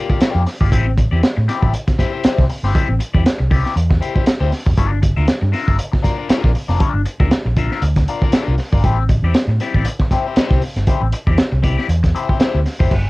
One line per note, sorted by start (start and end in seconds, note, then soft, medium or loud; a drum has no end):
0.10 0.20 A#3 soft
0.10 0.20 F4 medium
0.10 0.20 G4 medium
0.10 0.21 D5 medium
0.10 kick medium
0.21 0.42 A#3 loud
0.21 0.42 F4 loud
0.21 0.42 G4 loud
0.21 0.42 D5 medium
0.21 muted fingered electric bass stroke soft
0.21 snare loud
0.21 closed hi-hat loud
0.35 0.45 F2 medium
0.46 muted clean electric guitar stroke soft
0.46 snare soft
0.46 open hi-hat medium
0.61 0.71 G1 loud
0.61 0.72 A#3 medium
0.61 0.72 F4 soft
0.61 0.72 G4 medium
0.61 0.73 D5 medium
0.61 kick medium
0.72 1.07 A1 loud
0.72 0.91 C4 medium
0.72 0.87 E4 medium
0.72 0.87 G4 medium
0.72 0.86 C5 medium
0.72 kick loud
0.72 closed hi-hat medium
0.87 muted clean electric guitar stroke soft
0.97 muted clean electric guitar stroke soft
0.97 kick medium
0.97 closed hi-hat medium
1.11 1.21 E2 medium
1.11 1.21 C4 medium
1.11 1.21 E4 medium
1.11 1.22 G4 medium
1.11 1.23 D5 medium
1.22 muted clean electric guitar stroke soft
1.22 muted fingered electric bass stroke soft
1.22 snare loud
1.22 closed hi-hat medium
1.36 1.47 A2 medium
1.36 muted clean electric guitar stroke medium
1.48 1.62 C4 medium
1.48 1.62 E4 medium
1.48 1.62 G4 medium
1.48 1.61 D5 medium
1.48 snare soft
1.48 closed hi-hat medium
1.62 1.72 A1 medium
1.62 1.72 C4 medium
1.62 1.72 E4 medium
1.62 1.73 G4 medium
1.62 1.74 D5 medium
1.62 kick medium
1.73 muted clean electric guitar stroke soft
1.73 closed hi-hat medium
1.87 muted clean electric guitar stroke soft
1.87 kick medium
1.87 snare soft
1.87 closed hi-hat medium
1.98 2.13 C4 medium
1.98 2.12 E4 medium
1.98 2.12 G4 medium
1.98 2.12 C5 medium
1.98 kick medium
1.98 snare soft
1.98 closed hi-hat medium
2.13 2.23 C4 medium
2.13 2.23 E4 medium
2.13 2.24 G4 medium
2.13 2.24 C5 medium
2.24 2.43 C4 medium
2.24 2.43 E4 medium
2.24 2.44 G4 medium
2.24 2.44 C5 medium
2.24 muted fingered electric bass stroke soft
2.24 snare loud
2.24 closed hi-hat loud
2.38 2.48 C2 medium
2.38 kick loud
2.38 snare soft
2.49 muted clean electric guitar stroke soft
2.49 open hi-hat medium
2.63 2.73 G1 medium
2.63 2.73 C4 soft
2.63 2.73 E4 medium
2.63 2.73 G4 medium
2.63 2.74 C5 medium
2.63 snare soft
2.74 2.94 C4 medium
2.74 2.89 E4 loud
2.74 2.88 G4 medium
2.74 2.88 C5 medium
2.74 kick loud
2.74 closed hi-hat medium
2.89 2.99 A1 medium
2.89 muted clean electric guitar stroke medium
2.99 muted clean electric guitar stroke soft
2.99 closed hi-hat medium
3.14 3.24 E2 medium
3.14 3.24 C4 medium
3.14 3.24 E4 medium
3.14 3.24 G4 medium
3.14 3.26 D5 medium
3.14 kick medium
3.25 muted clean electric guitar stroke soft
3.25 muted fingered electric bass stroke soft
3.25 snare loud
3.25 closed hi-hat medium
3.39 3.63 C2 medium
3.39 muted clean electric guitar stroke soft
3.51 3.65 C4 medium
3.51 3.64 E4 medium
3.51 3.64 G4 medium
3.51 3.63 D5 medium
3.51 kick medium
3.51 open hi-hat medium
3.65 3.74 C4 medium
3.65 3.74 E4 medium
3.65 3.75 G4 medium
3.65 3.76 D5 medium
3.65 snare soft
3.76 3.99 E2 medium
3.76 muted clean electric guitar stroke medium
3.76 closed hi-hat medium
3.90 muted clean electric guitar stroke soft
3.90 kick medium
3.90 snare soft
4.01 4.15 C4 medium
4.01 4.15 E4 medium
4.01 4.15 G4 medium
4.01 4.14 C5 medium
4.01 closed hi-hat medium
4.15 4.25 C4 soft
4.15 4.25 E4 medium
4.15 4.25 G4 medium
4.15 4.26 C5 medium
4.15 kick medium
4.26 muted clean electric guitar stroke soft
4.26 muted fingered electric bass stroke soft
4.26 snare loud
4.26 closed hi-hat medium
4.41 4.51 D2 medium
4.41 4.51 C4 medium
4.41 4.51 E4 medium
4.41 4.52 G4 medium
4.41 4.52 C5 medium
4.52 muted clean electric guitar stroke soft
4.52 snare soft
4.52 open hi-hat medium
4.66 4.77 F1 loud
4.66 muted clean electric guitar stroke soft
4.66 kick medium
4.77 5.13 G1 loud
4.77 4.98 D4 medium
4.77 4.92 F4 medium
4.77 4.91 A#4 medium
4.77 4.91 D5 medium
4.77 kick loud
4.77 closed hi-hat medium
4.92 muted clean electric guitar stroke soft
5.02 muted clean electric guitar stroke soft
5.02 kick medium
5.02 closed hi-hat medium
5.17 5.27 D2 medium
5.17 5.26 D4 soft
5.17 5.27 F4 medium
5.17 5.27 A#4 medium
5.17 5.28 E5 medium
5.28 muted fingered electric bass stroke medium
5.28 snare loud
5.28 closed hi-hat medium
5.42 5.52 G2 loud
5.42 muted clean electric guitar stroke soft
5.52 5.68 D4 medium
5.52 5.67 F4 medium
5.52 5.67 A#4 medium
5.52 5.66 E5 medium
5.52 snare soft
5.52 open hi-hat soft
5.67 5.78 G1 medium
5.67 5.76 D4 soft
5.67 5.76 F4 medium
5.67 5.77 A#4 medium
5.67 5.78 E5 medium
5.67 kick medium
5.78 muted clean electric guitar stroke soft
5.78 closed hi-hat medium
5.92 muted clean electric guitar stroke soft
5.92 kick medium
5.92 snare soft
6.03 6.18 D4 medium
6.03 6.18 F4 medium
6.03 6.17 A#4 medium
6.03 6.17 D5 medium
6.03 kick medium
6.03 snare soft
6.03 closed hi-hat medium
6.18 6.28 D4 soft
6.18 6.28 F4 soft
6.18 6.29 A#4 medium
6.18 6.29 D5 medium
6.29 6.50 D4 medium
6.29 6.50 F4 medium
6.29 6.51 A#4 medium
6.29 6.51 D5 medium
6.29 muted fingered electric bass stroke soft
6.29 snare loud
6.29 closed hi-hat loud
6.44 6.54 A#1 medium
6.44 kick loud
6.44 snare soft
6.55 muted clean electric guitar stroke soft
6.55 open hi-hat medium
6.68 6.79 F1 loud
6.68 6.78 D4 medium
6.68 6.79 F4 medium
6.68 6.79 A#4 medium
6.68 6.80 D5 medium
6.68 snare soft
6.79 7.01 D4 medium
6.79 6.94 F4 medium
6.79 6.93 A#4 medium
6.79 6.93 D5 loud
6.79 kick loud
6.79 closed hi-hat medium
6.94 7.04 G1 medium
6.94 muted clean electric guitar stroke medium
7.05 muted clean electric guitar stroke soft
7.05 closed hi-hat medium
7.20 7.30 D2 medium
7.20 7.31 D4 soft
7.20 7.31 F4 soft
7.20 7.31 A#4 medium
7.20 7.32 E5 medium
7.20 kick loud
7.31 muted fingered electric bass stroke soft
7.31 snare loud
7.31 closed hi-hat medium
7.45 7.68 A#1 medium
7.45 muted clean electric guitar stroke soft
7.56 7.72 D4 medium
7.56 7.72 F4 medium
7.56 7.71 A#4 medium
7.56 7.71 E5 medium
7.56 kick medium
7.56 closed hi-hat medium
7.71 7.82 D4 medium
7.71 7.83 F4 medium
7.71 7.83 A#4 medium
7.71 7.84 E5 medium
7.71 snare soft
7.82 8.05 D2 medium
7.82 muted clean electric guitar stroke medium
7.82 closed hi-hat medium
7.96 muted clean electric guitar stroke soft
7.96 kick medium
7.96 snare soft
7.96 closed hi-hat medium
8.08 8.23 D4 medium
8.08 8.23 F4 medium
8.08 8.22 A#4 medium
8.08 8.22 D5 medium
8.08 closed hi-hat medium
8.22 8.32 D4 soft
8.22 8.33 F4 medium
8.22 8.33 A#4 medium
8.22 8.33 D5 medium
8.22 kick medium
8.32 8.54 D4 medium
8.32 8.54 F4 medium
8.32 8.54 A#4 medium
8.32 8.54 D5 medium
8.32 muted fingered electric bass stroke soft
8.32 snare loud
8.32 closed hi-hat loud
8.48 8.58 C2 medium
8.58 muted clean electric guitar stroke soft
8.58 snare soft
8.58 open hi-hat medium
8.72 8.83 G1 medium
8.72 8.84 D4 soft
8.72 8.84 F4 medium
8.72 8.84 A#4 medium
8.72 8.85 D5 medium
8.72 kick loud
8.84 9.19 A1 loud
8.84 9.03 C4 medium
8.84 8.98 E4 medium
8.84 8.98 G4 medium
8.84 8.97 C5 medium
8.84 kick loud
8.84 closed hi-hat medium
8.98 muted clean electric guitar stroke medium
9.09 muted clean electric guitar stroke soft
9.09 kick loud
9.09 closed hi-hat medium
9.22 9.33 E2 medium
9.22 9.35 C4 medium
9.22 9.34 E4 medium
9.22 9.35 G4 medium
9.22 9.36 D5 medium
9.34 muted fingered electric bass stroke soft
9.34 muted clean electric guitar stroke soft
9.34 snare loud
9.34 closed hi-hat medium
9.47 9.58 A2 loud
9.47 muted clean electric guitar stroke soft
9.60 9.76 C4 medium
9.60 9.75 E4 medium
9.60 9.74 G4 medium
9.60 9.74 D5 medium
9.60 snare soft
9.60 closed hi-hat medium
9.74 9.84 A1 medium
9.74 9.87 C4 medium
9.74 9.87 E4 medium
9.74 9.87 G4 medium
9.74 9.88 D5 medium
9.74 kick medium
9.85 muted clean electric guitar stroke soft
9.85 closed hi-hat medium
9.99 muted clean electric guitar stroke soft
9.99 kick medium
9.99 snare soft
10.11 10.26 C4 medium
10.11 10.26 E4 medium
10.11 10.26 G4 medium
10.11 10.25 C5 medium
10.11 kick medium
10.11 snare soft
10.11 closed hi-hat medium
10.26 10.36 C4 soft
10.26 10.36 E4 medium
10.26 10.37 G4 medium
10.26 10.37 C5 medium
10.36 10.61 C4 medium
10.36 10.61 E4 medium
10.36 10.61 G4 loud
10.36 10.61 C5 loud
10.36 muted fingered electric bass stroke soft
10.36 snare loud
10.36 closed hi-hat medium
10.50 10.61 C2 medium
10.50 kick loud
10.50 snare soft
10.62 muted clean electric guitar stroke soft
10.62 open hi-hat medium
10.76 10.86 G1 loud
10.76 muted clean electric guitar stroke medium
10.76 snare soft
10.76 closed hi-hat soft
10.87 11.07 C4 medium
10.87 11.02 E4 medium
10.87 11.02 G4 medium
10.87 11.02 C5 medium
10.87 kick loud
10.87 closed hi-hat medium
11.01 11.11 A1 medium
11.01 muted clean electric guitar stroke soft
11.12 muted clean electric guitar stroke soft
11.12 closed hi-hat loud
11.27 11.37 E2 medium
11.27 11.37 C4 soft
11.27 11.38 E4 medium
11.27 11.38 G4 medium
11.27 11.39 D5 medium
11.27 kick medium
11.38 muted fingered electric bass stroke soft
11.38 muted clean electric guitar stroke soft
11.38 snare loud
11.38 closed hi-hat medium
11.52 11.75 C2 medium
11.52 muted clean electric guitar stroke medium
11.63 11.78 C4 medium
11.63 11.77 E4 medium
11.63 11.77 G4 medium
11.63 11.76 D5 medium
11.63 kick medium
11.63 closed hi-hat medium
11.78 11.87 C4 medium
11.78 11.88 E4 medium
11.78 11.88 G4 medium
11.78 11.89 D5 medium
11.78 snare soft
11.88 12.12 E2 medium
11.88 muted clean electric guitar stroke soft
11.88 closed hi-hat medium
12.03 muted clean electric guitar stroke soft
12.03 kick medium
12.03 snare soft
12.03 closed hi-hat medium
12.15 12.29 C4 medium
12.15 12.29 E4 medium
12.15 12.28 G4 medium
12.15 12.28 C5 medium
12.15 closed hi-hat medium
12.29 12.38 C4 soft
12.29 12.38 E4 soft
12.29 12.39 G4 medium
12.29 12.39 C5 medium
12.29 kick medium
12.39 12.59 C4 medium
12.39 12.59 E4 medium
12.39 12.59 G4 medium
12.39 12.59 C5 medium
12.39 muted fingered electric bass stroke soft
12.39 snare loud
12.39 closed hi-hat medium
12.55 12.65 D2 medium
12.66 muted clean electric guitar stroke soft
12.66 snare soft
12.66 open hi-hat medium
12.79 12.90 F1 loud
12.79 12.93 C4 soft
12.79 12.93 E4 medium
12.79 12.93 G4 medium
12.79 12.93 C5 medium
12.79 kick loud
12.91 13.10 G1 medium
12.91 kick loud
12.91 crash medium